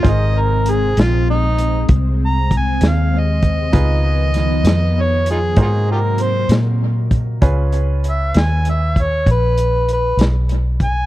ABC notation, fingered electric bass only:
X:1
M:12/8
L:1/8
Q:3/8=65
K:Abdor
V:1 name="Fingered electric bass" clef=bass
A,,,3 B,,,3 =C,,3 E,,3 | D,,3 F,,3 A,,3 B,,3 | D,,3 E,,3 B,,,3 C,,3 |]